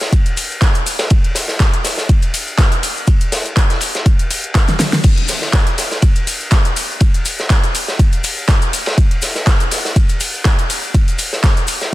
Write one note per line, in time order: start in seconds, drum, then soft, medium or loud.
0.01 snare medium
0.01 maracas soft
0.13 kick loud
0.13 closed hi-hat medium
0.13 ride loud
0.13 maracas medium
0.26 closed hi-hat medium
0.26 maracas soft
0.37 open hi-hat loud
0.37 ride medium
0.37 maracas medium
0.51 maracas soft
0.62 kick loud
0.62 snare loud
0.62 clap loud
0.62 closed hi-hat medium
0.62 ride medium
0.62 maracas medium
0.75 closed hi-hat medium
0.75 maracas soft
0.86 open hi-hat medium
0.86 ride medium
0.86 maracas medium
0.99 snare loud
0.99 ride medium
0.99 maracas soft
1.10 kick loud
1.10 closed hi-hat medium
1.10 ride loud
1.10 maracas soft
1.24 closed hi-hat medium
1.35 snare medium
1.35 open hi-hat loud
1.35 ride medium
1.35 maracas loud
1.48 snare medium
1.48 maracas soft
1.60 kick loud
1.60 snare loud
1.60 clap loud
1.60 closed hi-hat medium
1.60 ride medium
1.60 maracas soft
1.74 closed hi-hat medium
1.74 maracas soft
1.84 snare medium
1.84 open hi-hat loud
1.84 ride medium
1.84 maracas medium
1.98 snare medium
1.98 maracas soft
2.09 kick loud
2.09 closed hi-hat medium
2.09 ride medium
2.09 maracas soft
2.22 closed hi-hat medium
2.22 maracas soft
2.34 open hi-hat loud
2.34 ride medium
2.34 maracas medium
2.47 maracas soft
2.58 kick loud
2.58 snare loud
2.58 clap loud
2.58 closed hi-hat medium
2.58 ride medium
2.58 maracas medium
2.72 closed hi-hat medium
2.72 maracas soft
2.83 open hi-hat loud
2.83 ride medium
2.83 maracas medium
2.97 maracas soft
3.07 kick loud
3.07 closed hi-hat medium
3.07 ride medium
3.07 maracas soft
3.21 closed hi-hat medium
3.21 maracas soft
3.32 snare loud
3.32 open hi-hat loud
3.32 ride medium
3.32 maracas medium
3.46 closed hi-hat soft
3.46 maracas soft
3.57 kick loud
3.57 snare medium
3.57 clap loud
3.57 closed hi-hat medium
3.57 ride medium
3.57 maracas medium
3.70 snare soft
3.70 closed hi-hat medium
3.70 maracas soft
3.81 open hi-hat loud
3.81 ride medium
3.81 maracas medium
3.95 snare medium
3.95 closed hi-hat soft
3.95 maracas soft
4.06 kick loud
4.06 closed hi-hat medium
4.06 ride medium
4.06 maracas medium
4.19 closed hi-hat medium
4.19 maracas soft
4.31 open hi-hat loud
4.31 ride medium
4.31 maracas medium
4.44 closed hi-hat soft
4.44 maracas soft
4.55 kick loud
4.55 snare loud
4.55 clap loud
4.55 closed hi-hat medium
4.55 ride medium
4.55 maracas soft
4.68 snare medium
4.68 closed hi-hat medium
4.68 maracas soft
4.79 snare loud
4.79 snare medium
4.79 open hi-hat medium
4.79 ride medium
4.79 maracas medium
4.92 snare medium
4.92 open hi-hat medium
4.92 maracas soft
5.04 kick loud
5.04 closed hi-hat medium
5.04 crash medium
5.04 ride loud
5.04 ride medium
5.04 maracas soft
5.18 closed hi-hat medium
5.28 snare medium
5.28 open hi-hat loud
5.28 ride medium
5.28 maracas medium
5.42 snare medium
5.42 maracas soft
5.53 kick loud
5.53 snare loud
5.53 clap loud
5.53 closed hi-hat medium
5.53 ride medium
5.53 maracas medium
5.67 closed hi-hat medium
5.67 maracas soft
5.78 snare medium
5.78 open hi-hat loud
5.78 ride medium
5.78 maracas medium
5.91 snare medium
5.91 maracas soft
6.02 kick loud
6.02 closed hi-hat medium
6.02 ride loud
6.02 ride medium
6.02 maracas medium
6.15 closed hi-hat medium
6.15 maracas soft
6.27 open hi-hat loud
6.27 ride medium
6.27 maracas medium
6.40 maracas soft
6.51 kick loud
6.51 snare loud
6.51 clap loud
6.51 closed hi-hat medium
6.51 ride medium
6.51 maracas medium
6.65 closed hi-hat medium
6.65 maracas soft
6.76 open hi-hat loud
6.76 ride medium
6.76 maracas medium
6.90 maracas soft
7.00 kick loud
7.00 closed hi-hat medium
7.00 ride loud
7.00 ride medium
7.00 maracas medium
7.14 closed hi-hat medium
7.14 maracas soft
7.25 open hi-hat loud
7.25 ride medium
7.25 maracas medium
7.38 snare soft
7.38 maracas soft
7.50 kick loud
7.50 snare loud
7.50 clap loud
7.50 closed hi-hat medium
7.50 ride medium
7.50 maracas medium
7.64 closed hi-hat medium
7.64 maracas soft
7.75 open hi-hat loud
7.75 ride medium
7.75 maracas loud
7.88 snare medium
7.88 maracas soft
7.99 kick loud
7.99 closed hi-hat medium
7.99 ride medium
7.99 maracas medium
8.13 closed hi-hat medium
8.13 maracas soft
8.24 open hi-hat loud
8.24 ride medium
8.24 maracas loud
8.37 maracas soft
8.48 kick loud
8.48 snare loud
8.48 clap loud
8.48 closed hi-hat medium
8.48 ride medium
8.48 maracas medium
8.62 closed hi-hat medium
8.62 maracas soft
8.73 open hi-hat loud
8.73 ride medium
8.73 maracas loud
8.86 snare loud
8.86 ride medium
8.86 maracas soft
8.98 kick loud
8.98 closed hi-hat medium
8.98 ride medium
8.98 maracas medium
9.11 closed hi-hat soft
9.22 snare medium
9.22 open hi-hat loud
9.22 ride medium
9.22 maracas loud
9.35 snare medium
9.35 maracas soft
9.47 kick loud
9.47 snare loud
9.47 clap loud
9.47 closed hi-hat medium
9.47 ride medium
9.47 maracas medium
9.60 closed hi-hat medium
9.60 maracas soft
9.71 snare medium
9.71 open hi-hat loud
9.71 ride medium
9.71 maracas loud
9.85 snare medium
9.85 maracas soft
9.96 kick loud
9.96 closed hi-hat medium
9.96 ride medium
9.96 maracas medium
10.09 closed hi-hat medium
10.09 maracas soft
10.20 open hi-hat loud
10.20 ride medium
10.20 maracas loud
10.34 maracas soft
10.44 kick loud
10.44 snare loud
10.44 clap loud
10.44 closed hi-hat medium
10.44 ride medium
10.44 maracas medium
10.59 closed hi-hat medium
10.59 maracas soft
10.70 open hi-hat loud
10.70 ride medium
10.70 maracas medium
10.83 maracas soft
10.94 kick loud
10.94 closed hi-hat medium
10.94 ride medium
10.94 maracas medium
11.08 closed hi-hat medium
11.08 maracas soft
11.18 open hi-hat loud
11.18 ride medium
11.18 maracas medium
11.33 snare medium
11.33 maracas soft
11.43 kick loud
11.43 snare loud
11.43 clap loud
11.43 closed hi-hat medium
11.43 ride medium
11.43 maracas medium
11.57 closed hi-hat medium
11.57 maracas soft
11.67 open hi-hat loud
11.67 ride medium
11.67 maracas loud
11.81 snare soft
11.81 maracas soft